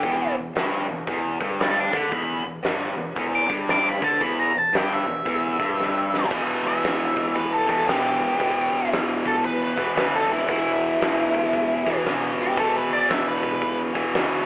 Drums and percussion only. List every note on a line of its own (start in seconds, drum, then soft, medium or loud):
0.03 kick loud
0.03 open hi-hat soft
0.55 snare loud
0.55 open hi-hat medium
1.07 kick medium
1.07 open hi-hat soft
1.41 kick loud
1.60 snare loud
1.60 open hi-hat medium
1.93 kick loud
2.12 kick medium
2.12 open hi-hat soft
2.64 snare loud
2.64 open hi-hat medium
3.16 kick loud
3.16 open hi-hat soft
3.50 kick loud
3.68 snare loud
3.68 open hi-hat soft
4.02 kick loud
4.21 kick loud
4.21 open hi-hat soft
4.74 snare loud
4.74 open hi-hat medium
5.26 kick loud
5.26 open hi-hat soft
5.60 kick loud
5.80 snare medium
6.14 snare medium
6.23 snare medium
6.31 kick loud
6.31 crash medium
6.84 snare loud
6.84 open hi-hat medium
7.17 kick medium
7.36 kick medium
7.36 open hi-hat soft
7.69 kick medium
7.88 snare medium
7.88 open hi-hat soft
8.40 kick medium
8.40 open hi-hat soft
8.92 snare loud
8.92 open hi-hat medium
9.26 kick medium
9.44 kick medium
9.44 open hi-hat medium
9.78 kick medium
9.96 snare loud
9.96 open hi-hat medium
10.41 snare soft
10.49 kick loud
10.49 open hi-hat medium
11.01 snare loud
11.01 open hi-hat medium
11.34 kick medium
11.53 kick medium
11.53 open hi-hat medium
11.86 kick medium
12.05 snare medium
12.05 open hi-hat medium
12.49 snare soft
12.57 kick loud
12.57 open hi-hat soft
13.09 snare loud
13.09 open hi-hat medium
13.43 kick medium
13.62 kick medium
13.62 open hi-hat medium
13.95 kick medium
14.14 snare loud
14.14 open hi-hat medium